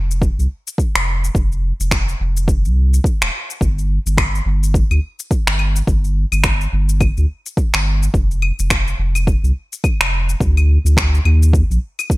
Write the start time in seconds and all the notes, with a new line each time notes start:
Already playing: F1
0.11 shaker
0.22 kick, shaker
0.38 C2, shaker
0.67 shaker
0.78 kick, shaker
0.95 F1, finger snap, shaker
1.24 shaker
1.35 F1, kick, shaker
1.52 shaker
1.80 F1, shaker
1.91 finger snap, kick, shaker
2.09 shaker
2.20 F1
2.37 shaker
2.48 kick, shaker
2.65 C2, shaker
2.94 shaker
3.04 kick, shaker
3.21 D#1, finger snap, shaker
3.50 shaker
3.61 G1, kick, shaker
3.78 shaker
4.06 G1, shaker
4.18 finger snap, kick, claves, shaker
4.35 shaker
4.45 G1
4.63 shaker
4.74 kick, shaker
4.90 D2, claves, shaker
5.20 shaker
5.31 kick, shaker
5.46 G1, finger snap, shaker
5.59 claves
5.76 shaker
5.87 G1, kick, shaker
6.04 shaker
6.32 G1, claves, shaker
6.44 finger snap, kick, shaker
6.61 shaker
6.72 G1
6.89 shaker
7.01 kick, claves, shaker
7.17 D2, shaker
7.46 shaker
7.57 kick, shaker
7.74 G1, finger snap, claves, shaker
8.03 shaker
8.14 F1, kick, shaker
8.31 shaker
8.42 claves
8.59 F1, shaker
8.70 finger snap, kick, shaker
8.88 shaker
8.99 F1
9.15 claves, shaker
9.27 kick, shaker
9.43 C2, shaker
9.73 shaker
9.84 kick, claves, shaker
10.00 F1, finger snap, shaker
10.29 shaker
10.40 D2, kick, shaker
10.57 claves, shaker
10.84 D2, shaker
10.97 finger snap, kick, shaker
11.15 shaker
11.25 D#2, claves
11.43 shaker
11.53 kick, shaker
11.70 A#1, shaker
11.99 claves, shaker
12.10 kick, shaker